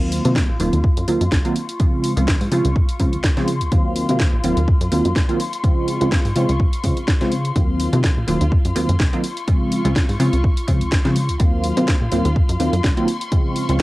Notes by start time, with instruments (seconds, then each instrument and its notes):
Already playing: analog synth bass D#2, analog polysynth D#3 F#3 A#3 C4 F4, string section F4 F5 C6
0.12 open hi-hat
0.25 analog synth bass C3, analog polysynth D#3 F#3 A#3 C4 F4, closed hi-hat
0.36 kick, snare, closed hi-hat
0.49 analog synth bass A#1
0.60 analog synth bass D#1, analog polysynth D#3 F#3 A#3 C4 F4, open hi-hat
0.73 analog synth bass D#2, closed hi-hat
0.84 kick
0.97 analog synth bass F#2, closed hi-hat
1.07 analog synth bass D#2, analog polysynth D#3 F#3 A#3 C4 F4, open hi-hat
1.21 analog synth bass F#2, closed hi-hat
1.32 analog synth bass C2, kick, snare, closed hi-hat
1.45 analog polysynth D#3 F#3 A#3 C4 F4, closed hi-hat
1.56 string section F4 C#6, open hi-hat
1.69 closed hi-hat
1.79 analog polysynth C#3 F3 G#3 C4 F4, kick, closed hi-hat
2.04 open hi-hat
2.16 analog synth bass C#2, analog polysynth C#3 F3 G#3 C4 F4, closed hi-hat
2.28 kick, snare, closed hi-hat
2.41 analog synth bass G#2, open hi-hat
2.52 analog synth bass C#3, analog polysynth C#3 F3 G#3 C4 F4, open hi-hat
2.65 analog synth bass C#2, closed hi-hat
2.76 kick
2.89 closed hi-hat
3.00 analog polysynth C#3 F3 G#3 C4 F4, analog synth bass C#3, kick, open hi-hat
3.13 analog synth bass C#2, closed hi-hat
3.24 kick, snare, closed hi-hat
3.37 analog polysynth C#3 F3 G#3 C4 F4, analog synth bass C#3, snare, closed hi-hat
3.48 open hi-hat
3.61 analog synth bass C#2, closed hi-hat
3.72 analog synth bass D#2, analog polysynth D#3 F#3 A#3 C4 F4, string section F4 F5, kick, closed hi-hat
3.96 open hi-hat
4.09 analog synth bass C3, analog polysynth D#3 F#3 A#3 C4 F4, closed hi-hat
4.20 kick, snare, closed hi-hat
4.33 analog synth bass A#1
4.44 analog synth bass D#1, analog polysynth D#3 F#3 A#3 C4 F4, open hi-hat
4.57 analog synth bass D#2, closed hi-hat
4.68 kick
4.81 analog synth bass F#2, closed hi-hat
4.91 analog synth bass D#2, analog polysynth D#3 F#3 A#3 C4 F4, open hi-hat
5.05 analog synth bass F#2, closed hi-hat
5.16 analog synth bass C2, kick, snare, closed hi-hat
5.28 analog polysynth D#3 F#3 A#3 C4 F4, closed hi-hat
5.40 string section F4 C#6, open hi-hat
5.53 closed hi-hat
5.63 analog polysynth C#3 F3 G#3 C4 F4, kick, closed hi-hat
5.88 open hi-hat
6.00 analog synth bass C#2, analog polysynth C#3 F3 G#3 C4 F4, closed hi-hat
6.12 kick, snare, closed hi-hat
6.25 analog synth bass G#2, open hi-hat
6.36 analog polysynth C#3 F3 G#3 C4 F4, analog synth bass C#3, open hi-hat
6.49 analog synth bass C#2, closed hi-hat
6.60 kick
6.73 closed hi-hat
6.84 analog polysynth C#3 F3 G#3 C4 F4, analog synth bass C#3, kick, open hi-hat
6.97 closed hi-hat
7.08 kick, snare, closed hi-hat
7.21 analog polysynth C#3 F3 G#3 C4 F4, analog synth bass C#3, snare, closed hi-hat
7.32 open hi-hat
7.45 closed hi-hat
7.56 analog synth bass D#2, analog polysynth D#3 F#3 A#3 C4 F4, string section F4 F5, kick, closed hi-hat
7.80 open hi-hat
7.93 analog synth bass C3, analog polysynth D#3 F#3 A#3 C4 F4, closed hi-hat
8.04 kick, snare, closed hi-hat
8.17 analog synth bass A#1
8.28 analog synth bass D#1, analog polysynth D#3 F#3 A#3 C4 F4, open hi-hat
8.41 analog synth bass D#2, closed hi-hat
8.52 kick
8.65 analog synth bass F#2, closed hi-hat
8.75 analog synth bass D#2, analog polysynth D#3 F#3 A#3 C4 F4, open hi-hat
8.89 analog synth bass F#2, closed hi-hat
9.00 analog synth bass C2, kick, snare, closed hi-hat
9.13 analog polysynth D#3 F#3 A#3 C4 F4, closed hi-hat
9.24 string section F4 C#6, open hi-hat
9.37 closed hi-hat
9.47 analog polysynth C#3 F3 G#3 C4 F4, kick, closed hi-hat
9.72 open hi-hat
9.84 analog synth bass C#2, analog polysynth C#3 F3 G#3 C4 F4, closed hi-hat
9.96 kick, snare, closed hi-hat
10.09 analog synth bass G#2, open hi-hat
10.19 analog polysynth C#3 F3 G#3 C4 F4, analog synth bass C#3, open hi-hat
10.33 analog synth bass C#2, closed hi-hat
10.44 kick
10.57 closed hi-hat
10.67 analog polysynth C#3 F3 G#3 C4 F4, analog synth bass C#3, kick, open hi-hat
10.81 analog synth bass C#2, closed hi-hat
10.92 kick, snare, closed hi-hat
11.05 analog polysynth C#3 F3 G#3 C4 F4, analog synth bass C#3, snare, closed hi-hat
11.16 open hi-hat
11.29 analog synth bass C#2, closed hi-hat
11.39 analog synth bass D#2, analog polysynth D#3 F#3 A#3 C4 F4, string section F4 F5 C6, kick, closed hi-hat
11.64 open hi-hat
11.77 analog synth bass C3, analog polysynth D#3 F#3 A#3 C4 F4, closed hi-hat
11.88 kick, snare, closed hi-hat
12.01 analog synth bass A#1
12.12 analog synth bass D#1, analog polysynth D#3 F#3 A#3 C4 F4, open hi-hat
12.25 analog synth bass D#2, closed hi-hat
12.36 kick
12.49 analog synth bass F#2, closed hi-hat
12.59 analog synth bass D#2, analog polysynth D#3 F#3 A#3 C4 F4, open hi-hat
12.73 analog synth bass F#2, closed hi-hat
12.84 analog synth bass C2, kick, snare, closed hi-hat
12.97 analog polysynth D#3 F#3 A#3 C4 F4, closed hi-hat
13.08 string section F4 C#6, open hi-hat
13.21 closed hi-hat
13.32 analog polysynth C#3 F3 G#3 C4 F4, kick, closed hi-hat
13.56 open hi-hat
13.69 analog synth bass C#2, analog polysynth C#3 F3 G#3 C4 F4, closed hi-hat